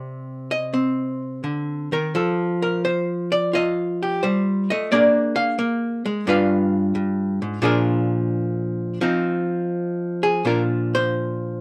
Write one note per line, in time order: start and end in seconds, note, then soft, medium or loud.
0.00 1.43 C3 medium
0.00 0.73 C4 soft
0.00 1.93 G4 soft
0.00 0.51 D5 medium
0.51 1.21 D#5 medium
0.74 2.12 C4 medium
1.44 1.92 D3 medium
1.92 2.15 D#3 medium
1.92 2.15 A#4 medium
2.15 4.23 F3 medium
2.15 2.62 A4 medium
2.62 2.84 A#4 medium
2.85 3.32 C5 medium
3.32 3.54 D5 medium
3.53 4.94 F4 medium
3.53 4.02 D#5 medium
4.03 4.24 G4 medium
4.23 4.70 G3 medium
4.23 4.69 C5 medium
4.70 4.92 A3 medium
4.70 4.91 D#5 loud
4.92 5.57 A#3 medium
4.92 5.58 D4 medium
4.92 6.26 G#4 medium
4.92 6.26 A#4 medium
4.92 5.35 D5 medium
5.36 5.58 F5 loud
5.59 6.05 A#3 medium
6.06 6.27 G#3 medium
6.27 6.94 G2 medium
6.27 7.62 D4 medium
6.27 7.62 F4 medium
6.27 7.62 B4 medium
6.27 7.65 F5 medium
6.95 7.42 G2 medium
7.42 7.61 G#2 medium
7.62 8.98 A#2 medium
7.62 9.00 F3 medium
7.62 8.98 D4 medium
7.62 8.99 G#4 medium
7.62 8.99 A#4 medium
9.01 10.44 F3 medium
9.01 10.43 C4 medium
9.01 10.44 D#4 medium
10.23 10.46 G#4 medium
10.45 11.61 A#2 medium
10.45 11.61 F3 soft
10.45 11.61 D4 soft
10.45 11.61 F4 soft
10.45 10.62 A#4 medium
10.95 11.61 C5 medium